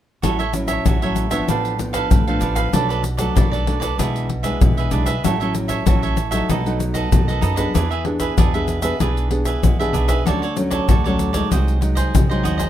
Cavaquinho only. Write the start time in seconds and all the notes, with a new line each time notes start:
0.22 F#4 A4 C#5 E5
0.39 A4 C#5 E5
0.53 muted cavaquinho stroke
0.68 A4 C#5 E5
0.85 F#4 A4 C#5 E5
1.02 A4 C#5 E5
1.31 A4 C#5 E5
1.48 D4 A4 B4 F5
1.79 muted cavaquinho stroke
1.93 A4 B4 F5
2.27 A4 B4 F5
2.41 D4 A4 B4 F5
2.55 A4 B4 F5
2.73 D4 A4 B4 D5
2.89 A4 B4 D5
3.03 muted cavaquinho stroke
3.17 A4 B4 D5
3.35 D4 A4 B4 D5
3.52 A4 B4 D5
3.80 A4 B4 D5
3.98 D4 G#4 B4 E5
4.29 muted cavaquinho stroke
4.43 G#4 B4 E5
4.77 G#4 B4 E5
4.92 D4 G#4 B4 E5
5.06 G#4 B4 E5
5.24 F#4 A4 C#5 E5
5.40 A4 C#5 E5
5.54 muted cavaquinho stroke
5.68 A4 C#5 E5
5.86 F#4 A4 C#5 E5
6.02 A4 C#5 E5
6.31 A4 C#5 E5
6.49 D#4 A4 B4 D#5
6.79 muted cavaquinho stroke
6.94 A4 B4 D#5
7.28 A4 B4 D#5
7.41 D#4 A4 B4 D#5
7.56 A4 B4 D#5
7.74 D4 G#4 B4 E5
7.91 G#4 B4 E5
8.05 muted cavaquinho stroke
8.20 G#4 B4 E5
8.38 D4 G#4 B4 E5
8.54 G#4 B4 E5
8.82 G#4 B4 E5
9.00 D4 G#4 B4 E5
9.31 muted cavaquinho stroke
9.45 G#4 B4 E5
9.79 G#4 B4 E5
9.93 D4 G#4 B4 E5
10.08 G#4 B4 E5
10.26 F#4 A4 C#5 D5
10.42 A4 C#5 D5
10.56 muted cavaquinho stroke
10.70 A4 C#5 D5
10.88 F#4 A4 C#5 D5
11.04 A4 C#5 D5
11.33 A4 C#5 D5
11.51 F#4 G#4 C5 D#5
11.81 muted cavaquinho stroke
11.95 G#4 C5 D#5
12.29 G#4 C5 D#5
12.43 F#4 G#4 C5 D#5
12.58 G#4 C5 D#5